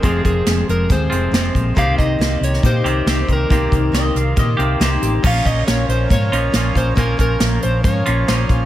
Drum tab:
CC |----------------|----------------|----------------|x---------------|
HH |x-x-x-x-x-x-x-x-|x-x-x-x-x-x-x-x-|x-x-x-x-x-x-x-x-|--x-x-x-x-x-x-x-|
SD |----o-------o---|----o--o----o---|----o-------o---|----o-------o---|
BD |o-o-----o-----o-|o-o-----o-----o-|o-o-----o-------|o-o-----o-----o-|

CC |----------------|
HH |x-x-x-x-x-x-x-x-|
SD |----o-------o---|
BD |o-o-----o-----o-|